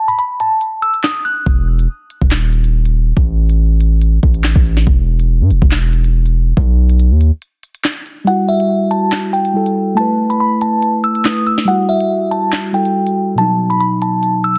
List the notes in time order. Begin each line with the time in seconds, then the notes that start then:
0.08 B5, closed hi-hat
0.19 B5, closed hi-hat
0.40 A5, closed hi-hat
0.61 closed hi-hat
0.82 E6, closed hi-hat
0.94 closed hi-hat
1.04 D#6, snare, clap
1.25 F#6, closed hi-hat
1.46 E1, kick, closed hi-hat
1.79 closed hi-hat
2.10 closed hi-hat
2.22 D#1, kick
2.31 snare, clap, closed hi-hat
2.53 closed hi-hat
2.64 closed hi-hat
2.85 closed hi-hat
3.17 A1, kick, closed hi-hat
3.50 closed hi-hat
3.81 closed hi-hat
4.02 closed hi-hat
4.23 A1, kick, closed hi-hat
4.34 closed hi-hat
4.44 snare, clap
4.55 A1, kick
4.66 closed hi-hat
4.77 snare
4.87 E1, kick, closed hi-hat
5.20 closed hi-hat
5.41 G2
5.51 E1, closed hi-hat
5.62 E1, kick
5.72 snare, clap, closed hi-hat
5.93 closed hi-hat
6.04 closed hi-hat
6.26 closed hi-hat
6.57 B1, kick, closed hi-hat
6.90 closed hi-hat
7.00 closed hi-hat
7.11 D#2
7.21 closed hi-hat
7.42 closed hi-hat
7.63 closed hi-hat
7.75 closed hi-hat
7.85 snare, clap
8.06 closed hi-hat
8.24 G3 E4 F#5, closed hi-hat
8.30 F#4
8.48 E5
8.60 closed hi-hat
8.91 A5, closed hi-hat
9.12 snare, clap, closed hi-hat
9.33 G5, closed hi-hat
9.45 closed hi-hat
9.53 G3 E4 A4
9.66 closed hi-hat
9.95 A3 E4 A5, closed hi-hat
10.00 B4
10.30 B5, closed hi-hat
10.40 B5
10.61 A5, closed hi-hat
10.82 closed hi-hat
11.04 E6, closed hi-hat
11.15 closed hi-hat
11.24 A3 E4 B4 D#6, snare, clap
11.46 E6, closed hi-hat
11.58 snare
11.65 G3 E4 F#5, closed hi-hat
11.70 F#4
11.89 E5
12.01 closed hi-hat
12.31 A5, closed hi-hat
12.53 snare, clap, closed hi-hat
12.73 G3 E4 A4 G5, closed hi-hat
12.85 closed hi-hat
13.07 closed hi-hat
13.35 B2 F#3 A5, closed hi-hat
13.41 D#4
13.70 B5, closed hi-hat
13.80 B5, closed hi-hat
14.02 A5, closed hi-hat
14.23 closed hi-hat
14.44 E6, closed hi-hat